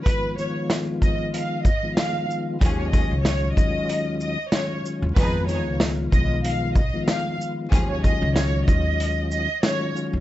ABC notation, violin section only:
X:1
M:4/4
L:1/16
Q:"Swing 16ths" 1/4=94
K:Ebm
V:1 name="Violin section"
c2 d2 z2 e z f2 e2 f2 z2 | z d e2 d2 e4 e2 d2 z2 | c2 d2 z2 e z f2 e2 f2 z2 | z d e2 d2 e4 e2 d2 z2 |]